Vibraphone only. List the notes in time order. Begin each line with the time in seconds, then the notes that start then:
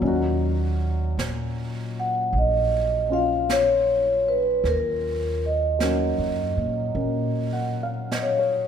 2.00 F#5
2.38 D#5
3.13 F5
3.51 C#5
4.28 B4
4.68 A#4
5.46 D#5
8.22 C#5